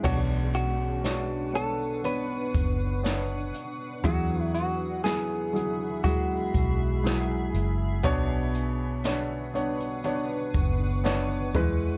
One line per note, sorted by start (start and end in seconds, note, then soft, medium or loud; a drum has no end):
0.00 1.50 B2 medium
0.00 0.15 G#3 medium
0.00 0.99 B3 medium
0.00 1.04 C#4 soft
0.00 0.99 D4 medium
0.00 0.15 E4 soft
0.00 0.14 G#4 medium
0.04 2.50 B1 medium
0.04 4.04 B2 medium
0.04 4.00 D4 medium
0.04 0.19 F#4 medium
0.04 4.00 B4 medium
0.04 0.99 C#5 medium
0.04 6.00 F#5 medium
0.04 4.00 C#6 medium
0.04 kick medium
0.04 crash medium
0.55 1.55 F#4 medium
0.55 closed hi-hat medium
1.04 1.51 B3 medium
1.04 1.52 D4 medium
1.04 4.14 D4 medium
1.04 1.52 C#5 medium
1.04 snare medium
1.04 closed hi-hat medium
1.53 2.01 B3 medium
1.53 2.01 D4 medium
1.53 2.01 A4 medium
1.53 2.02 C#5 medium
1.53 closed hi-hat medium
2.04 2.99 B3 medium
2.04 5.04 B3 medium
2.04 2.99 D4 medium
2.04 3.01 B4 medium
2.04 2.99 C#5 medium
2.04 closed hi-hat medium
2.54 3.51 F#1 medium
2.54 kick medium
2.54 closed hi-hat medium
3.03 3.99 B3 medium
3.03 3.99 D4 medium
3.03 3.99 C#5 medium
3.03 snare medium
3.03 closed hi-hat medium
3.54 closed hi-hat medium
4.04 8.04 E2 medium
4.04 6.50 E2 medium
4.04 4.99 F#3 medium
4.04 5.00 E4 medium
4.04 4.51 F#4 medium
4.04 8.00 G#4 medium
4.04 5.00 G#4 loud
4.04 8.00 E5 medium
4.04 8.00 B5 medium
4.04 kick medium
4.04 closed hi-hat medium
4.55 5.04 F#4 medium
4.55 closed hi-hat medium
5.04 5.52 F#3 medium
5.04 8.54 B3 medium
5.04 5.52 E4 medium
5.04 6.00 G#4 medium
5.04 5.52 G#4 medium
5.04 snare medium
5.04 closed hi-hat medium
5.53 6.01 F#3 medium
5.53 6.02 E4 medium
5.53 6.02 G#4 medium
5.53 closed hi-hat medium
6.04 6.99 F#3 medium
6.04 8.14 G#3 medium
6.04 6.99 E4 medium
6.04 7.50 F#4 medium
6.04 7.00 G#4 medium
6.04 8.02 G#5 medium
6.04 kick medium
6.04 closed hi-hat medium
6.54 7.51 B1 medium
6.54 kick medium
6.54 closed hi-hat medium
7.04 7.99 F#3 medium
7.04 7.99 E4 medium
7.04 8.00 G#4 medium
7.04 snare medium
7.04 closed hi-hat medium
7.54 8.01 F#1 medium
7.54 closed hi-hat medium
8.03 10.50 B1 medium
8.03 9.50 B2 medium
8.03 11.54 B2 medium
8.03 8.99 B3 loud
8.03 8.99 D4 loud
8.03 11.51 D4 medium
8.03 11.97 B4 medium
8.03 8.99 C#5 loud
8.03 11.51 F#5 medium
8.03 11.51 C#6 medium
8.03 kick loud
8.03 closed hi-hat medium
8.55 closed hi-hat medium
9.04 9.52 B3 medium
9.04 11.64 D4 medium
9.04 9.52 D4 medium
9.04 9.53 C#5 medium
9.04 snare medium
9.04 closed hi-hat medium
9.54 10.02 B3 medium
9.54 10.02 D4 medium
9.54 10.02 C#5 medium
9.54 closed hi-hat medium
9.80 closed hi-hat medium
10.04 11.97 B3 medium
10.04 10.99 B3 medium
10.04 11.00 D4 medium
10.04 11.00 C#5 medium
10.04 closed hi-hat medium
10.54 11.50 F#1 medium
10.54 kick medium
10.54 closed hi-hat medium
11.04 11.54 B3 medium
11.04 11.54 D4 medium
11.04 11.55 C#5 medium
11.04 snare medium
11.04 closed hi-hat medium
11.54 11.97 E2 medium
11.54 11.97 E3 medium
11.54 11.97 G#3 medium
11.54 11.97 E4 medium
11.54 11.97 B4 loud
11.54 11.97 E5 medium
11.54 11.97 G#5 medium
11.54 11.97 E6 medium
11.54 kick loud
11.54 closed hi-hat medium